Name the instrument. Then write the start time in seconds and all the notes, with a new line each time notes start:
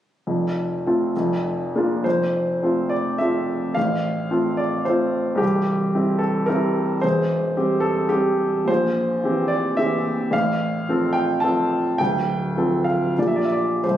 upright piano
0.27 F1 F2
0.86 A3 C4 F4
1.16 F1 F2
1.76 A#3 D4 F4
2.04 F1 F2 C5
2.63 A3 C4 F4
2.89 D5
3.18 A3 C4 F4 E5
3.74 A1 A2 F5
4.31 A3 C4 F4
4.57 D5
4.85 A3 C4 F4 C5
5.35 C2 G4
5.41 C1
5.95 G3 C4 E4
6.19 A4
6.46 G3 C4 E4 A#4
7.02 E1 E2 C5
7.57 G3 C4 G4
7.80 A4
8.09 G3 C4 G4
8.65 A#2 C5
8.70 A#1
9.24 E3 C4 G4
9.48 D5
9.77 E3 C4 G4 E5
10.31 A1 A2 F5
10.89 F3 C4 A4
11.13 G5
11.40 F3 C4 A4 A5
11.98 D1 D2 G5
12.57 F3 C4 A4
12.84 F5
13.18 A#1 A#2 F3 A#3 G4 D5
13.27 E5
13.36 D5
13.45 E5
13.52 D5
13.84 C1 C2 C5